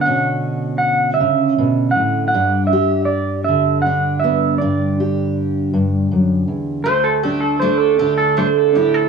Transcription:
<<
  \new Staff \with { instrumentName = "Clean electric guitar" } { \time 6/8 \key d \major \tempo 4. = 53 fis''4 fis''8 e''4 fis''8 | fis''8 e''8 d''8 e''8 fis''8 e''8 | d''2 r4 | c''16 a'16 g'16 a'16 c''16 a'16 g'16 a'16 c''16 a'16 g'16 a'16 | }
  \new Staff \with { instrumentName = "Mandolin" } { \time 6/8 \key d \major r2. | r2. | r2. | a8 a'8 d'8 a'8 d'8 a'8 | }
  \new Staff \with { instrumentName = "Steel-string acoustic guitar" } { \clef bass \time 6/8 \key d \major << { <cis' d'>2. | d'8 g'4. d'8 b8 | d'8 g'2~ g'8 | r8 d'8 a8 d'8 a8 e'8 | } \\ { <b, d>4. cis8 b,8 a,8 | g,4. d4. | g,4. g,8 fis,8 e,8 | d,4. d4. | } >> }
>>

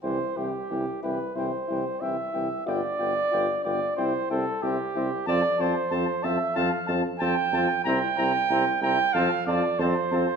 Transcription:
<<
  \new Staff \with { instrumentName = "Trumpet" } { \time 4/4 \key c \major \tempo 4 = 92 g''8 g''8 g''8 g''8 g''8 g''8 g''8 g''8 | g''8 g''8 g''8 g''8 g''8 g''8 g''8 g''8 | a''8 a''8 a''8 a''8 a''8 a''8 a''8 a''8 | bes''8 bes''8 bes''8 bes''8 a''8 a''8 a''8 a''8 | }
  \new Staff \with { instrumentName = "Flugelhorn" } { \time 4/4 \key c \major c''8 g'4 b'8 c''4 e''4 | d''4. d''8 c''8 a'8 g'4 | d''8 c''4 e''8 f''8 r8 g''4 | g''4. g''8 f''8 d''8 c''4 | }
  \new Staff \with { instrumentName = "French horn" } { \time 4/4 \key c \major e'8 e'8 e'8 e'8 e'8 e'8 e'8 e'8 | f'8 f'8 f'8 f'8 e'8 e'8 e'8 e'8 | f'8 f'8 f'8 f'8 f'8 f'8 f'8 f'8 | e'8 e'8 e'8 e'8 f'8 f'8 f'8 f'8 | }
  \new Staff \with { instrumentName = "Trombone" } { \time 4/4 \key c \major e8 e8 e8 e8 e8 e8 e8 e8 | b8 b8 b8 b8 c'8 c'8 c'8 c'8 | c'8 c'8 c'8 c'8 c'8 c'8 c'8 c'8 | c'8 c'8 c'8 c'8 c'8 c'8 c'8 c'8 | }
  \new Staff \with { instrumentName = "Tuba" } { \clef bass \time 4/4 \key c \major c,8 c,8 c,8 c,8 c,8 c,8 c,8 c,8 | g,,8 g,,8 g,,8 g,,8 c,8 c,8 c,8 c,8 | f,8 f,8 f,8 f,8 f,8 f,8 f,8 f,8 | c,8 c,8 c,8 c,8 f,8 f,8 f,8 f,8 | }
>>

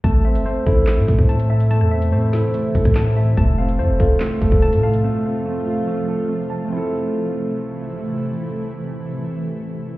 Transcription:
<<
  \new Staff \with { instrumentName = "Tine electric piano" } { \time 4/4 \key a \minor \tempo 4 = 144 a''8 e''8 c''8 a'4. a''8 e''8 | a''8 e''8 c''8 a'4. a''8 e''8 | a''8 f''8 c''8 a'4. a''8 f''8~ | f''2~ f''8 r4. |
r1 | r1 | }
  \new Staff \with { instrumentName = "Grand piano" } { \time 4/4 \key a \minor a8 c'8 a8 e'8 a8 a'8 a8 a''8 | a8 c'8 a8 e'8 a8 a'8 a8 a''8 | a8 c'8 a8 f'8 a8 a'8 a8 a''8 | a8 c'8 a8 f'8 a8 a'8 a8 a''8 |
<a c' e' a'>1~ | <a c' e' a'>1 | }
  \new Staff \with { instrumentName = "Ambient pad" } { \clef bass \time 4/4 \key a \minor << { <e e'>1~ | <e e'>1 | <f f'>1~ | <f f'>1 |
<c e a e'>1~ | <c e a e'>1 | } \\ { <c a>1~ | <c a>1~ | <c a>1~ | <c a>1 |
r1 | r1 | } >> }
  \new Staff \with { instrumentName = "808-style bass" } { \clef bass \time 4/4 \key a \minor a,,8. g,,16 r8 a,,8. a,16 a,16 a,4~ a,16~ | a,16 e,8. a,8. r8. a,,16 a,4~ a,16 | f,,4 f,16 f,,16 f,,8 r8 f,,16 f,,8 a,8. | r1 |
r1 | r1 | }
  \new DrumStaff \with { instrumentName = "Drums" } \drummode { \time 4/4 <hh bd>8. hh16 r8 <hh bd>8 <hc sn>8 <hh bd>16 bd16 hh16 hh8 hh16 | hh16 ss8 hh16 r8 <hh sn>8 hh8 <hh bd>16 <hh bd ss>16 <hc sn>8 hho8 | <hh bd>8. hh16 r8 <hh bd>8 <hc sn>8 <hh bd>16 bd16 hh16 hh8 hh16 | r4 r4 r4 r4 |
r4 r4 r4 r4 | r4 r4 r4 r4 | }
>>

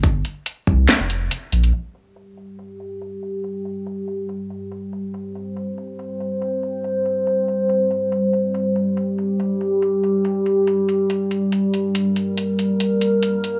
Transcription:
<<
  \new Staff \with { instrumentName = "Analog synth pad" } { \time 4/4 \key g \minor \tempo 4 = 141 r1 | <g g'>1~ | <g g'>1 | c''1~ |
c''1 | g'1~ | g'1 | bes'1 | }
  \new Staff \with { instrumentName = "Sub bass" } { \clef bass \time 4/4 \key g \minor g,,8 r4 c,8 r16 f,,8. r8 bes,,8 | r1 | r1 | r1 |
r1 | r1 | r1 | r1 | }
  \new DrumStaff \with { instrumentName = "Drums" } \drummode { \time 4/4 <hh bd>8 hh8 hh8 bd8 <hc hh sn>8 hh8 hh8 hh16 hh16 | hh8 hh8 hh8 hh8 hh8 hh8 hh8 hh8 | hh8 hh8 hh8 hh8 hh8 hh8 hh8 hh8 | hh8 hh8 hh8 hh8 hh8 hh8 hh8 hh8 |
hh8 hh8 hh8 hh8 hh8 hh8 hh8 hh8 | hh8 hh8 hh8 hh8 hh8 hh8 hh8 hh8 | hh8 hh8 hh8 hh8 hh8 hh8 hh8 hh8 | hh8 hh8 hh8 hh8 hh8 hh8 hh8 hh8 | }
>>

